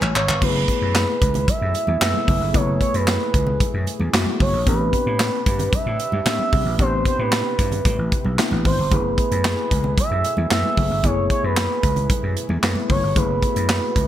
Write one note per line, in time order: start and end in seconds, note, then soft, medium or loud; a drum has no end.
0.00 0.13 A1 medium
0.00 0.27 C#5 medium
0.00 0.13 G#5 medium
0.00 clap medium
0.00 high conga medium
0.15 0.26 G#1 medium
0.15 0.45 C#5 medium
0.15 0.40 F5 medium
0.15 clap medium
0.15 muted conga soft
0.15 low conga medium
0.28 0.40 G1 loud
0.28 0.54 B4 medium
0.28 clap loud
0.41 0.64 F#1 loud
0.41 4.63 B2 medium
0.41 1.17 A3 medium
0.41 4.63 A3 medium
0.41 1.17 B3 medium
0.41 1.17 E4 medium
0.41 4.63 E4 medium
0.41 0.48 F#4 medium
0.41 4.63 G#4 medium
0.41 1.50 B4 loud
0.41 kick loud
0.41 crash loud
0.41 low conga medium
0.48 1.20 G#4 medium
0.68 kick medium
0.68 closed hi-hat medium
0.68 muted conga soft
0.82 1.04 F#2 loud
0.95 snare loud
0.95 clap medium
0.95 closed hi-hat medium
0.95 muted conga soft
1.22 1.44 C#2 medium
1.22 kick loud
1.22 closed hi-hat medium
1.34 closed hi-hat medium
1.34 low conga medium
1.48 2.02 E5 loud
1.48 muted slap bass stroke soft
1.48 kick loud
1.48 closed hi-hat loud
1.48 muted conga soft
1.48 high conga medium
1.62 1.73 F#2 loud
1.74 closed hi-hat medium
1.74 muted conga soft
1.87 1.99 E2 medium
1.87 high conga medium
2.01 2.12 F#2 loud
2.01 2.39 A3 medium
2.01 2.39 B3 medium
2.01 2.39 E4 medium
2.01 2.39 B4 medium
2.01 2.57 E5 loud
2.01 snare loud
2.01 clap loud
2.01 closed hi-hat medium
2.14 high conga medium
2.28 2.39 F#1 medium
2.28 kick loud
2.28 open hi-hat medium
2.28 muted conga soft
2.28 high conga medium
2.28 low conga medium
2.41 2.52 G1 medium
2.54 2.76 F#1 loud
2.54 3.29 A3 medium
2.54 3.29 B3 medium
2.54 3.30 E4 medium
2.54 3.30 B4 medium
2.54 2.81 C#5 medium
2.54 kick loud
2.54 closed hi-hat loud
2.54 muted conga soft
2.54 low conga medium
2.81 2.97 C#5 medium
2.81 kick medium
2.81 closed hi-hat medium
2.94 3.16 F#2 loud
2.94 4.01 B4 medium
2.94 closed hi-hat medium
3.07 snare loud
3.07 clap medium
3.07 closed hi-hat medium
3.07 muted conga soft
3.34 3.56 C#2 loud
3.34 kick loud
3.34 closed hi-hat medium
3.47 low conga medium
3.60 kick loud
3.60 closed hi-hat loud
3.60 muted conga soft
3.60 high conga medium
3.74 3.85 F#2 loud
3.87 closed hi-hat medium
3.87 muted conga soft
4.00 4.11 E2 loud
4.00 high conga medium
4.13 4.25 F#2 medium
4.13 4.51 A3 medium
4.13 4.51 B3 medium
4.13 4.51 E4 medium
4.13 4.51 F#4 medium
4.13 snare loud
4.13 clap medium
4.13 closed hi-hat medium
4.26 high conga medium
4.40 4.51 F#1 loud
4.40 4.66 C#5 medium
4.40 kick loud
4.40 open hi-hat medium
4.40 high conga medium
4.40 low conga medium
4.53 4.64 A#1 medium
4.67 4.89 A1 loud
4.67 8.87 C3 medium
4.67 5.42 B3 medium
4.67 5.42 C4 medium
4.67 6.77 D4 medium
4.67 5.42 D4 medium
4.67 8.88 G4 medium
4.67 5.42 G4 medium
4.67 8.88 B4 medium
4.67 5.75 B4 loud
4.67 kick loud
4.67 closed hi-hat medium
4.67 muted conga soft
4.67 low conga medium
4.93 kick medium
4.93 closed hi-hat medium
4.93 muted conga soft
5.06 5.29 A2 loud
5.19 snare loud
5.19 clap loud
5.19 closed hi-hat medium
5.46 5.68 G2 medium
5.46 kick loud
5.46 closed hi-hat loud
5.46 muted conga soft
5.59 closed hi-hat medium
5.59 low conga medium
5.73 6.27 E5 loud
5.73 muted slap bass stroke soft
5.73 kick loud
5.73 closed hi-hat medium
5.73 high conga medium
5.86 5.97 A2 loud
6.00 closed hi-hat medium
6.12 6.24 G2 medium
6.12 high conga medium
6.26 6.37 A2 loud
6.26 6.63 B3 medium
6.26 6.64 C4 medium
6.26 6.64 D4 medium
6.26 6.64 G4 medium
6.26 6.76 E5 loud
6.26 snare loud
6.26 clap loud
6.26 closed hi-hat medium
6.39 high conga medium
6.53 6.64 C2 loud
6.53 kick loud
6.53 open hi-hat medium
6.53 high conga medium
6.53 low conga medium
6.66 6.77 A#1 loud
6.79 7.01 A1 loud
6.79 7.54 B3 medium
6.79 7.54 C4 medium
6.79 7.54 D4 medium
6.79 14.07 E4 medium
6.79 7.55 G4 medium
6.79 7.04 C5 medium
6.79 kick loud
6.79 closed hi-hat medium
6.79 low conga medium
7.05 7.22 C5 loud
7.05 kick medium
7.05 closed hi-hat medium
7.19 7.41 A2 loud
7.19 8.26 B4 loud
7.32 snare loud
7.32 clap medium
7.32 closed hi-hat medium
7.59 7.81 G2 medium
7.59 kick medium
7.59 closed hi-hat medium
7.72 closed hi-hat medium
7.72 low conga medium
7.85 7.96 A2 loud
7.85 kick loud
7.85 closed hi-hat medium
7.85 high conga medium
7.99 8.10 A1 medium
8.12 kick loud
8.12 closed hi-hat medium
8.25 8.36 B1 medium
8.25 high conga medium
8.38 8.76 B3 medium
8.38 8.76 C4 medium
8.38 8.76 D4 medium
8.38 8.76 E4 medium
8.38 snare loud
8.38 clap medium
8.38 closed hi-hat medium
8.51 8.63 A1 medium
8.51 high conga medium
8.65 8.76 G#1 loud
8.65 8.94 C5 medium
8.65 kick loud
8.65 open hi-hat medium
8.65 muted conga soft
8.65 high conga soft
8.65 low conga medium
8.78 8.89 G1 medium
8.91 9.14 F#1 loud
8.91 14.07 B2 medium
8.91 9.67 A3 medium
8.91 14.07 A3 medium
8.91 9.67 B3 medium
8.91 9.67 E4 medium
8.91 13.12 G#4 medium
8.91 9.67 G#4 medium
8.91 9.98 B4 medium
8.91 kick loud
8.91 closed hi-hat medium
8.91 low conga medium
9.18 kick loud
9.18 closed hi-hat medium
9.18 muted conga soft
9.31 9.53 F#2 loud
9.31 closed hi-hat medium
9.44 snare loud
9.44 clap medium
9.44 closed hi-hat medium
9.71 9.93 C#2 loud
9.71 kick loud
9.71 closed hi-hat medium
9.84 low conga medium
9.98 10.48 E5 loud
9.98 kick loud
9.98 closed hi-hat loud
9.98 high conga medium
10.11 10.22 F#2 loud
10.24 closed hi-hat medium
10.24 muted conga soft
10.37 10.49 E2 medium
10.37 high conga medium
10.50 10.62 F#2 loud
10.50 10.88 A3 medium
10.50 10.88 B3 medium
10.50 10.88 E4 medium
10.50 10.89 B4 medium
10.50 11.06 E5 loud
10.50 snare loud
10.50 clap medium
10.50 closed hi-hat medium
10.63 high conga medium
10.77 10.88 F#1 medium
10.77 kick loud
10.77 open hi-hat medium
10.77 muted conga soft
10.77 high conga medium
10.77 low conga medium
10.90 11.02 G1 medium
11.04 11.26 F#1 loud
11.04 11.79 A3 medium
11.04 11.79 B3 medium
11.04 11.79 E4 medium
11.04 11.79 G#4 medium
11.04 11.31 C#5 loud
11.04 kick loud
11.04 closed hi-hat loud
11.04 low conga medium
11.30 11.43 C#5 medium
11.30 kick medium
11.30 closed hi-hat medium
11.44 11.66 F#2 loud
11.44 12.46 B4 medium
11.56 snare loud
11.56 clap medium
11.56 closed hi-hat medium
11.56 muted conga soft
11.83 12.06 C#2 loud
11.83 kick loud
11.83 closed hi-hat loud
11.83 muted conga soft
11.96 closed hi-hat medium
11.96 low conga medium
12.10 muted slap bass stroke soft
12.10 kick loud
12.10 closed hi-hat loud
12.10 muted conga soft
12.10 high conga medium
12.23 12.34 F#2 loud
12.37 closed hi-hat medium
12.49 12.61 E2 medium
12.49 high conga medium
12.63 12.74 F#2 loud
12.63 13.01 A3 medium
12.63 13.01 B3 medium
12.63 13.01 E4 medium
12.63 13.01 B4 medium
12.63 snare loud
12.63 clap medium
12.63 closed hi-hat medium
12.76 high conga medium
12.90 13.01 F#1 medium
12.90 13.19 C#5 medium
12.90 kick loud
12.90 open hi-hat medium
12.90 high conga medium
12.90 low conga medium
13.03 13.14 G1 medium
13.16 13.38 F#1 loud
13.16 13.91 A3 medium
13.16 13.92 B3 medium
13.16 13.92 E4 medium
13.16 14.07 F#4 medium
13.16 13.92 G#4 medium
13.16 14.07 B4 medium
13.16 kick loud
13.16 closed hi-hat medium
13.16 muted conga soft
13.16 low conga medium
13.42 kick medium
13.42 closed hi-hat medium
13.42 muted conga soft
13.56 13.78 F#2 loud
13.56 closed hi-hat medium
13.69 snare loud
13.69 clap medium
13.69 closed hi-hat medium
13.96 14.07 C#2 medium
13.96 kick medium
13.96 closed hi-hat medium